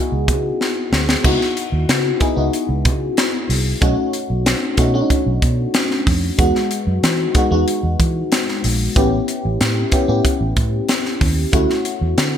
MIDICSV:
0, 0, Header, 1, 4, 480
1, 0, Start_track
1, 0, Tempo, 643087
1, 928, Time_signature, 4, 2, 24, 8
1, 9237, End_track
2, 0, Start_track
2, 0, Title_t, "FM electric piano"
2, 0, Program_c, 0, 5
2, 0, Control_c, 0, 64, 127
2, 0, Note_on_c, 0, 59, 80
2, 0, Note_on_c, 0, 63, 74
2, 0, Note_on_c, 0, 64, 74
2, 0, Note_on_c, 0, 66, 90
2, 0, Note_on_c, 0, 68, 96
2, 495, Note_off_c, 0, 59, 0
2, 496, Note_off_c, 0, 63, 0
2, 498, Note_off_c, 0, 64, 0
2, 500, Note_off_c, 0, 66, 0
2, 924, Note_on_c, 0, 59, 89
2, 927, Note_on_c, 0, 63, 80
2, 929, Note_on_c, 0, 64, 75
2, 933, Note_on_c, 0, 66, 101
2, 937, Control_c, 0, 64, 0
2, 940, Note_off_c, 0, 68, 0
2, 1087, Control_c, 0, 64, 127
2, 1411, Note_off_c, 0, 59, 0
2, 1413, Note_off_c, 0, 63, 0
2, 1414, Note_off_c, 0, 64, 0
2, 1416, Note_off_c, 0, 66, 0
2, 1643, Note_on_c, 0, 59, 85
2, 1646, Note_on_c, 0, 63, 81
2, 1649, Note_on_c, 0, 64, 77
2, 1652, Note_on_c, 0, 68, 92
2, 1726, Note_off_c, 0, 59, 0
2, 1727, Note_off_c, 0, 63, 0
2, 1729, Note_off_c, 0, 64, 0
2, 1730, Note_off_c, 0, 68, 0
2, 1764, Note_on_c, 0, 59, 82
2, 1768, Note_on_c, 0, 63, 79
2, 1769, Note_on_c, 0, 64, 76
2, 1773, Note_on_c, 0, 66, 83
2, 2413, Note_off_c, 0, 59, 0
2, 2415, Note_off_c, 0, 63, 0
2, 2415, Note_off_c, 0, 64, 0
2, 2417, Note_off_c, 0, 66, 0
2, 2845, Note_on_c, 0, 57, 88
2, 2847, Note_on_c, 0, 61, 82
2, 2851, Note_on_c, 0, 63, 79
2, 2853, Note_on_c, 0, 66, 101
2, 2858, Control_c, 0, 64, 0
2, 2991, Control_c, 0, 64, 127
2, 3331, Note_off_c, 0, 57, 0
2, 3332, Note_off_c, 0, 61, 0
2, 3334, Note_off_c, 0, 63, 0
2, 3335, Note_off_c, 0, 66, 0
2, 3564, Note_on_c, 0, 57, 93
2, 3567, Note_on_c, 0, 61, 79
2, 3570, Note_on_c, 0, 63, 78
2, 3573, Note_on_c, 0, 66, 95
2, 3646, Note_off_c, 0, 57, 0
2, 3648, Note_off_c, 0, 61, 0
2, 3649, Note_off_c, 0, 63, 0
2, 3651, Note_off_c, 0, 66, 0
2, 3686, Note_on_c, 0, 57, 87
2, 3689, Note_on_c, 0, 61, 79
2, 3690, Note_on_c, 0, 62, 65
2, 3694, Note_on_c, 0, 66, 94
2, 3736, Note_off_c, 0, 62, 0
2, 3739, Note_on_c, 0, 63, 79
2, 4333, Note_off_c, 0, 57, 0
2, 4335, Note_off_c, 0, 61, 0
2, 4338, Note_off_c, 0, 66, 0
2, 4360, Note_off_c, 0, 63, 0
2, 4763, Note_on_c, 0, 56, 89
2, 4766, Note_on_c, 0, 59, 82
2, 4770, Note_on_c, 0, 63, 78
2, 4771, Note_on_c, 0, 66, 96
2, 4775, Control_c, 0, 64, 0
2, 4927, Control_c, 0, 64, 127
2, 5250, Note_off_c, 0, 56, 0
2, 5251, Note_off_c, 0, 59, 0
2, 5254, Note_off_c, 0, 63, 0
2, 5254, Note_off_c, 0, 66, 0
2, 5485, Note_on_c, 0, 56, 86
2, 5487, Note_on_c, 0, 59, 79
2, 5490, Note_on_c, 0, 63, 77
2, 5493, Note_on_c, 0, 66, 92
2, 5566, Note_off_c, 0, 56, 0
2, 5567, Note_off_c, 0, 59, 0
2, 5569, Note_off_c, 0, 63, 0
2, 5570, Note_off_c, 0, 66, 0
2, 5604, Note_on_c, 0, 56, 90
2, 5606, Note_on_c, 0, 59, 74
2, 5609, Note_on_c, 0, 63, 80
2, 5612, Note_on_c, 0, 66, 100
2, 6252, Note_off_c, 0, 56, 0
2, 6253, Note_off_c, 0, 59, 0
2, 6255, Note_off_c, 0, 63, 0
2, 6256, Note_off_c, 0, 66, 0
2, 6686, Note_on_c, 0, 59, 88
2, 6692, Note_on_c, 0, 61, 79
2, 6693, Note_on_c, 0, 64, 84
2, 6695, Control_c, 0, 64, 0
2, 6696, Note_on_c, 0, 67, 98
2, 6819, Control_c, 0, 64, 127
2, 7171, Note_off_c, 0, 59, 0
2, 7174, Note_off_c, 0, 61, 0
2, 7175, Note_off_c, 0, 64, 0
2, 7176, Note_off_c, 0, 67, 0
2, 7405, Note_on_c, 0, 59, 85
2, 7407, Note_on_c, 0, 61, 78
2, 7410, Note_on_c, 0, 64, 78
2, 7415, Note_on_c, 0, 67, 96
2, 7486, Note_off_c, 0, 59, 0
2, 7487, Note_off_c, 0, 61, 0
2, 7488, Note_off_c, 0, 64, 0
2, 7491, Note_off_c, 0, 67, 0
2, 7525, Note_on_c, 0, 59, 85
2, 7526, Note_on_c, 0, 61, 80
2, 7531, Note_on_c, 0, 64, 73
2, 7533, Note_on_c, 0, 67, 95
2, 8172, Note_off_c, 0, 59, 0
2, 8173, Note_off_c, 0, 61, 0
2, 8176, Note_off_c, 0, 64, 0
2, 8177, Note_off_c, 0, 67, 0
2, 8601, Note_on_c, 0, 57, 82
2, 8604, Note_on_c, 0, 61, 76
2, 8606, Note_on_c, 0, 64, 77
2, 8609, Note_on_c, 0, 66, 101
2, 8615, Control_c, 0, 64, 0
2, 8741, Control_c, 0, 64, 127
2, 9089, Note_off_c, 0, 57, 0
2, 9090, Note_off_c, 0, 61, 0
2, 9092, Note_off_c, 0, 64, 0
2, 9093, Note_off_c, 0, 66, 0
2, 9237, End_track
3, 0, Start_track
3, 0, Title_t, "Fingered electric bass"
3, 0, Program_c, 1, 33
3, 90, Note_on_c, 1, 37, 94
3, 210, Note_on_c, 1, 49, 95
3, 221, Note_off_c, 1, 37, 0
3, 379, Note_off_c, 1, 49, 0
3, 689, Note_on_c, 1, 38, 82
3, 859, Note_off_c, 1, 38, 0
3, 930, Note_on_c, 1, 37, 94
3, 1014, Note_off_c, 1, 37, 0
3, 1286, Note_on_c, 1, 39, 86
3, 1372, Note_off_c, 1, 39, 0
3, 1407, Note_on_c, 1, 49, 97
3, 1577, Note_off_c, 1, 49, 0
3, 1767, Note_on_c, 1, 37, 84
3, 1852, Note_off_c, 1, 37, 0
3, 2007, Note_on_c, 1, 37, 102
3, 2131, Note_on_c, 1, 49, 99
3, 2142, Note_off_c, 1, 37, 0
3, 2300, Note_off_c, 1, 49, 0
3, 2608, Note_on_c, 1, 36, 93
3, 2778, Note_off_c, 1, 36, 0
3, 2849, Note_on_c, 1, 35, 96
3, 2933, Note_off_c, 1, 35, 0
3, 3209, Note_on_c, 1, 35, 91
3, 3379, Note_off_c, 1, 35, 0
3, 3566, Note_on_c, 1, 47, 97
3, 3736, Note_off_c, 1, 47, 0
3, 3929, Note_on_c, 1, 35, 107
3, 4013, Note_off_c, 1, 35, 0
3, 4047, Note_on_c, 1, 47, 98
3, 4217, Note_off_c, 1, 47, 0
3, 4531, Note_on_c, 1, 41, 90
3, 4699, Note_off_c, 1, 41, 0
3, 4768, Note_on_c, 1, 40, 96
3, 4852, Note_off_c, 1, 40, 0
3, 5126, Note_on_c, 1, 42, 95
3, 5211, Note_off_c, 1, 42, 0
3, 5248, Note_on_c, 1, 52, 100
3, 5417, Note_off_c, 1, 52, 0
3, 5606, Note_on_c, 1, 40, 94
3, 5691, Note_off_c, 1, 40, 0
3, 5846, Note_on_c, 1, 40, 91
3, 5931, Note_off_c, 1, 40, 0
3, 5968, Note_on_c, 1, 52, 95
3, 6137, Note_off_c, 1, 52, 0
3, 6451, Note_on_c, 1, 34, 102
3, 6619, Note_off_c, 1, 34, 0
3, 6690, Note_on_c, 1, 33, 108
3, 6859, Note_off_c, 1, 33, 0
3, 7054, Note_on_c, 1, 33, 97
3, 7136, Note_off_c, 1, 33, 0
3, 7170, Note_on_c, 1, 45, 110
3, 7339, Note_off_c, 1, 45, 0
3, 7527, Note_on_c, 1, 45, 93
3, 7611, Note_off_c, 1, 45, 0
3, 7767, Note_on_c, 1, 33, 96
3, 7852, Note_off_c, 1, 33, 0
3, 7887, Note_on_c, 1, 45, 108
3, 8056, Note_off_c, 1, 45, 0
3, 8369, Note_on_c, 1, 39, 100
3, 8538, Note_off_c, 1, 39, 0
3, 8607, Note_on_c, 1, 38, 91
3, 8692, Note_off_c, 1, 38, 0
3, 8967, Note_on_c, 1, 40, 98
3, 9051, Note_off_c, 1, 40, 0
3, 9086, Note_on_c, 1, 50, 107
3, 9237, Note_off_c, 1, 50, 0
3, 9237, End_track
4, 0, Start_track
4, 0, Title_t, "Drums"
4, 210, Note_on_c, 9, 36, 100
4, 211, Note_on_c, 9, 42, 69
4, 285, Note_off_c, 9, 36, 0
4, 285, Note_off_c, 9, 42, 0
4, 455, Note_on_c, 9, 38, 61
4, 530, Note_off_c, 9, 38, 0
4, 692, Note_on_c, 9, 38, 100
4, 766, Note_off_c, 9, 38, 0
4, 812, Note_on_c, 9, 38, 95
4, 887, Note_off_c, 9, 38, 0
4, 929, Note_on_c, 9, 36, 104
4, 929, Note_on_c, 9, 49, 101
4, 1004, Note_off_c, 9, 36, 0
4, 1004, Note_off_c, 9, 49, 0
4, 1054, Note_on_c, 9, 38, 35
4, 1128, Note_off_c, 9, 38, 0
4, 1171, Note_on_c, 9, 42, 87
4, 1246, Note_off_c, 9, 42, 0
4, 1411, Note_on_c, 9, 42, 88
4, 1413, Note_on_c, 9, 38, 120
4, 1486, Note_off_c, 9, 42, 0
4, 1488, Note_off_c, 9, 38, 0
4, 1645, Note_on_c, 9, 42, 86
4, 1648, Note_on_c, 9, 36, 107
4, 1720, Note_off_c, 9, 42, 0
4, 1723, Note_off_c, 9, 36, 0
4, 1892, Note_on_c, 9, 42, 85
4, 1966, Note_off_c, 9, 42, 0
4, 2128, Note_on_c, 9, 42, 71
4, 2129, Note_on_c, 9, 36, 109
4, 2202, Note_off_c, 9, 42, 0
4, 2204, Note_off_c, 9, 36, 0
4, 2369, Note_on_c, 9, 42, 92
4, 2374, Note_on_c, 9, 38, 127
4, 2443, Note_off_c, 9, 42, 0
4, 2448, Note_off_c, 9, 38, 0
4, 2612, Note_on_c, 9, 46, 97
4, 2687, Note_off_c, 9, 46, 0
4, 2849, Note_on_c, 9, 36, 120
4, 2850, Note_on_c, 9, 42, 89
4, 2924, Note_off_c, 9, 36, 0
4, 2925, Note_off_c, 9, 42, 0
4, 3086, Note_on_c, 9, 42, 88
4, 3160, Note_off_c, 9, 42, 0
4, 3330, Note_on_c, 9, 42, 89
4, 3332, Note_on_c, 9, 38, 119
4, 3405, Note_off_c, 9, 42, 0
4, 3407, Note_off_c, 9, 38, 0
4, 3563, Note_on_c, 9, 42, 84
4, 3566, Note_on_c, 9, 36, 104
4, 3638, Note_off_c, 9, 42, 0
4, 3641, Note_off_c, 9, 36, 0
4, 3808, Note_on_c, 9, 36, 91
4, 3809, Note_on_c, 9, 42, 88
4, 3883, Note_off_c, 9, 36, 0
4, 3884, Note_off_c, 9, 42, 0
4, 4048, Note_on_c, 9, 36, 96
4, 4048, Note_on_c, 9, 42, 79
4, 4122, Note_off_c, 9, 36, 0
4, 4123, Note_off_c, 9, 42, 0
4, 4284, Note_on_c, 9, 42, 92
4, 4289, Note_on_c, 9, 38, 126
4, 4358, Note_off_c, 9, 42, 0
4, 4363, Note_off_c, 9, 38, 0
4, 4409, Note_on_c, 9, 38, 33
4, 4483, Note_off_c, 9, 38, 0
4, 4530, Note_on_c, 9, 36, 96
4, 4531, Note_on_c, 9, 46, 89
4, 4604, Note_off_c, 9, 36, 0
4, 4606, Note_off_c, 9, 46, 0
4, 4766, Note_on_c, 9, 42, 87
4, 4767, Note_on_c, 9, 36, 113
4, 4841, Note_off_c, 9, 42, 0
4, 4842, Note_off_c, 9, 36, 0
4, 4890, Note_on_c, 9, 38, 38
4, 4965, Note_off_c, 9, 38, 0
4, 5006, Note_on_c, 9, 42, 92
4, 5081, Note_off_c, 9, 42, 0
4, 5251, Note_on_c, 9, 42, 90
4, 5253, Note_on_c, 9, 38, 126
4, 5326, Note_off_c, 9, 42, 0
4, 5328, Note_off_c, 9, 38, 0
4, 5483, Note_on_c, 9, 42, 88
4, 5485, Note_on_c, 9, 36, 109
4, 5558, Note_off_c, 9, 42, 0
4, 5560, Note_off_c, 9, 36, 0
4, 5730, Note_on_c, 9, 42, 90
4, 5805, Note_off_c, 9, 42, 0
4, 5968, Note_on_c, 9, 36, 95
4, 5969, Note_on_c, 9, 42, 75
4, 6043, Note_off_c, 9, 36, 0
4, 6043, Note_off_c, 9, 42, 0
4, 6208, Note_on_c, 9, 42, 88
4, 6213, Note_on_c, 9, 38, 117
4, 6283, Note_off_c, 9, 42, 0
4, 6288, Note_off_c, 9, 38, 0
4, 6332, Note_on_c, 9, 38, 36
4, 6406, Note_off_c, 9, 38, 0
4, 6449, Note_on_c, 9, 46, 100
4, 6523, Note_off_c, 9, 46, 0
4, 6689, Note_on_c, 9, 36, 112
4, 6689, Note_on_c, 9, 42, 92
4, 6763, Note_off_c, 9, 36, 0
4, 6764, Note_off_c, 9, 42, 0
4, 6927, Note_on_c, 9, 42, 85
4, 7002, Note_off_c, 9, 42, 0
4, 7170, Note_on_c, 9, 42, 89
4, 7172, Note_on_c, 9, 38, 122
4, 7245, Note_off_c, 9, 42, 0
4, 7247, Note_off_c, 9, 38, 0
4, 7402, Note_on_c, 9, 42, 88
4, 7405, Note_on_c, 9, 36, 111
4, 7476, Note_off_c, 9, 42, 0
4, 7480, Note_off_c, 9, 36, 0
4, 7648, Note_on_c, 9, 36, 90
4, 7649, Note_on_c, 9, 42, 84
4, 7722, Note_off_c, 9, 36, 0
4, 7723, Note_off_c, 9, 42, 0
4, 7886, Note_on_c, 9, 42, 76
4, 7888, Note_on_c, 9, 36, 106
4, 7961, Note_off_c, 9, 42, 0
4, 7962, Note_off_c, 9, 36, 0
4, 8125, Note_on_c, 9, 42, 92
4, 8130, Note_on_c, 9, 38, 122
4, 8200, Note_off_c, 9, 42, 0
4, 8205, Note_off_c, 9, 38, 0
4, 8249, Note_on_c, 9, 38, 34
4, 8324, Note_off_c, 9, 38, 0
4, 8368, Note_on_c, 9, 36, 98
4, 8368, Note_on_c, 9, 46, 88
4, 8443, Note_off_c, 9, 36, 0
4, 8443, Note_off_c, 9, 46, 0
4, 8607, Note_on_c, 9, 36, 115
4, 8607, Note_on_c, 9, 42, 86
4, 8681, Note_off_c, 9, 36, 0
4, 8682, Note_off_c, 9, 42, 0
4, 8730, Note_on_c, 9, 38, 39
4, 8804, Note_off_c, 9, 38, 0
4, 8845, Note_on_c, 9, 42, 91
4, 8920, Note_off_c, 9, 42, 0
4, 9089, Note_on_c, 9, 42, 91
4, 9091, Note_on_c, 9, 38, 123
4, 9164, Note_off_c, 9, 42, 0
4, 9165, Note_off_c, 9, 38, 0
4, 9237, End_track
0, 0, End_of_file